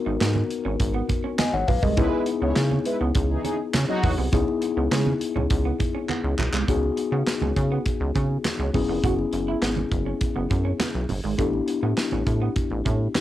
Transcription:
Already playing: tine electric piano B3 D#4 F#4 A#4
0.06 analog synth bass G#1, clean electric guitar D#4
0.21 analog synth bass G#2, clean electric guitar B3, snare, clap, closed hi-hat
0.35 muted clean electric guitar stroke, muted conga, high conga
0.50 closed hi-hat
0.65 analog synth bass G#1, clean electric guitar C#4
0.80 analog synth bass G#1, kick, closed hi-hat, muted conga
0.94 clean electric guitar B3, muted conga
1.09 muted clean electric guitar stroke, kick, closed hi-hat, high conga
1.24 clean electric guitar C#4
1.39 clean electric guitar B3, tine electric piano D#5 G#5, snare, clap, closed hi-hat, muted conga, high conga
1.53 analog synth bass G#1, tine electric piano C#5 F#5
1.68 analog synth bass B1, tine electric piano B4 F5, muted clean electric guitar stroke, kick, open hi-hat, high conga, low conga
1.82 analog synth bass C2, clean electric guitar G#3, tine electric piano A#4 D#5, kick
1.97 analog synth bass C#2, analog polysynth G#3 E4 B4, tine electric piano B3 D#4 E4 G#4, clean electric guitar C#4, kick, closed hi-hat, low conga
2.26 muted clean electric guitar stroke, closed hi-hat
2.42 analog synth bass C#2, analog polysynth G#3 E4 C#5, clean electric guitar B3
2.56 analog synth bass C#3, snare, clap, closed hi-hat, muted conga
2.71 clean electric guitar C#4, high conga
2.85 analog polysynth G#3 E4 B4, muted clean electric guitar stroke, closed hi-hat
3.01 analog synth bass C#2, clean electric guitar B3
3.15 analog synth bass C#2, kick, closed hi-hat, muted conga
3.30 analog polysynth E3 D#4 G#4
3.44 analog polysynth E3 D#4 G#4, clean electric guitar C#4, closed hi-hat, high conga
3.74 analog synth bass C#3, snare, clap, closed hi-hat, high conga
3.89 analog polysynth F#3 D#4 F#4, clean electric guitar C#4, muted conga
4.03 analog synth bass E2, muted clean electric guitar stroke, kick, open hi-hat, high conga, low conga
4.18 analog synth bass C2, clean electric guitar B3
4.32 analog synth bass C#2, tine electric piano B3 D#4 E4 G#4, clean electric guitar C#4, kick, closed hi-hat, muted conga, low conga
4.48 muted conga
4.62 muted clean electric guitar stroke, closed hi-hat
4.77 analog synth bass C#2, clean electric guitar B3
4.91 analog synth bass C#3, clean electric guitar G#3, snare, clap, closed hi-hat, muted conga
5.06 muted clean electric guitar stroke, muted conga, high conga
5.21 closed hi-hat
5.36 analog synth bass C#2, clean electric guitar C#4, low conga
5.50 analog synth bass C#2, kick, closed hi-hat
5.65 clean electric guitar B3
5.79 muted clean electric guitar stroke, kick, closed hi-hat, high conga
5.95 clean electric guitar C#4
6.09 clean electric guitar B3, clap, muted conga, high conga
6.24 analog synth bass C#2, muted conga
6.38 analog synth bass B1, muted clean electric guitar stroke, clap, high conga, low conga
6.53 analog synth bass C2, clean electric guitar G#3, clap
6.68 analog synth bass C#2, tine electric piano B3 D#4 F#4 G#4, clean electric guitar C#4, kick, closed hi-hat, low conga
6.83 muted conga
6.97 muted clean electric guitar stroke, closed hi-hat
7.12 analog synth bass C#3, clean electric guitar B3
7.27 snare, clap, closed hi-hat, muted conga
7.42 analog synth bass C#2, clean electric guitar C#4, muted conga, high conga
7.56 analog synth bass C#3, muted clean electric guitar stroke, kick, closed hi-hat
7.72 clean electric guitar B3
7.86 kick, closed hi-hat, muted conga
8.00 analog synth bass C#2
8.15 analog synth bass C#3, clean electric guitar C#4, kick, closed hi-hat, high conga
8.45 snare, clap, closed hi-hat, muted conga, high conga
8.59 analog synth bass C#2, clean electric guitar C#4, muted conga
8.73 analog synth bass F#1, tine electric piano B3 C#4 E4 G#4, muted clean electric guitar stroke, kick, open hi-hat, high conga, low conga
8.88 analog synth bass F1, clean electric guitar B3
9.03 analog synth bass F#1, clean electric guitar F#4, kick, closed hi-hat, muted conga, low conga
9.19 muted conga
9.33 analog synth bass F#1, muted clean electric guitar stroke, closed hi-hat
9.48 clean electric guitar E4
9.62 analog synth bass G#1, clean electric guitar B3, snare, clap, closed hi-hat
9.77 muted clean electric guitar stroke, muted conga, high conga
9.91 analog synth bass F#1, kick, closed hi-hat
10.06 clean electric guitar C#4
10.21 kick, closed hi-hat, muted conga
10.36 analog synth bass F#1, clean electric guitar B3
10.50 analog synth bass F#2, muted clean electric guitar stroke, kick, closed hi-hat, high conga
10.65 clean electric guitar C#4
10.80 clean electric guitar B3, snare, clap, closed hi-hat, muted conga, high conga
10.94 analog synth bass B1, muted conga
11.09 analog synth bass G1, muted clean electric guitar stroke, open hi-hat, high conga, low conga
11.24 analog synth bass G#1, clean electric guitar G#3
11.38 analog synth bass A1, clean electric guitar A3, tine electric piano B3 D4 E4 G4, kick, closed hi-hat, muted conga, low conga
11.53 muted conga
11.68 muted clean electric guitar stroke, closed hi-hat
11.83 analog synth bass A2, clean electric guitar B3
11.97 snare, clap, closed hi-hat, muted conga
12.12 analog synth bass A1, clean electric guitar C#4, muted conga, high conga
12.27 analog synth bass A2, muted clean electric guitar stroke, kick, closed hi-hat
12.42 clean electric guitar B3
12.56 kick, closed hi-hat
12.70 analog synth bass A1, muted conga
12.85 analog synth bass A2, clean electric guitar C#4, kick, closed hi-hat, high conga
13.15 tine electric piano B3 D4 E4 G4, snare, clap, closed hi-hat, high conga

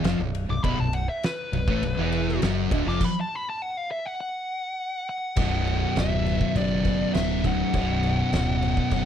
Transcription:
0.03 fingered electric bass F1, distorted electric guitar F2 F3, snare, ride
0.19 fingered electric bass B0, distorted electric guitar B1
0.35 ride
0.49 fingered electric bass B0, distorted electric guitar B1, lead electric guitar D6
0.64 fingered electric bass B0, distorted electric guitar B1 B2, lead electric guitar B5, kick, ride
0.79 fingered electric bass B0, distorted electric guitar B1, lead electric guitar A5
0.93 lead electric guitar F#5, ride
1.09 lead electric guitar E5
1.23 lead electric guitar B4, snare, ride
1.53 fingered electric bass B0, distorted electric guitar B1, ride
1.68 fingered electric bass A1, distorted electric guitar A2 A3, kick
1.82 fingered electric bass B0, distorted electric guitar B1, ride
1.97 fingered electric bass E1, distorted electric guitar E2 E3
2.12 ride
2.28 snare
2.41 fingered electric bass F#1, distorted electric guitar F#2 F#3, snare, ride
2.71 fingered electric bass D1, distorted electric guitar D2 D3, kick, ride
2.86 fingered electric bass F1, distorted electric guitar F2 F3, lead electric guitar D6, snare
3.01 lead electric guitar B5, kick, crash
3.21 lead electric guitar A5
3.35 lead electric guitar B5
3.50 lead electric guitar A5
3.62 lead electric guitar F#5
3.77 lead electric guitar F5
3.91 lead electric guitar E5
4.06 lead electric guitar F#5
4.21 lead electric guitar F#5
5.09 lead electric guitar F#5
5.36 fingered electric bass B0, distorted electric guitar B1 F#2 B2, kick, crash
5.67 crash
5.96 fingered electric bass D1, lead electric guitar E5, snare, crash
6.26 crash
6.41 kick
6.56 fingered electric bass F#1, distorted electric guitar B1 F#2, lead electric guitar D5, kick, crash
6.60 distorted electric guitar B2
6.84 distorted electric guitar B1 F#2 B2, kick, crash
7.13 fingered electric bass D1, distorted electric guitar B1 F#2 B2, lead electric guitar E5, snare, crash
7.43 overdriven electric guitar B1 F#2 B2, lead electric guitar F#5, kick, crash
7.73 fingered electric bass B0, distorted electric guitar B1 F#2 B2, kick, crash
8.03 crash
8.32 fingered electric bass D1, snare, crash
8.63 crash
8.77 kick
8.91 fingered electric bass F#1, distorted electric guitar B1, kick, crash
8.95 distorted electric guitar F#2 B2

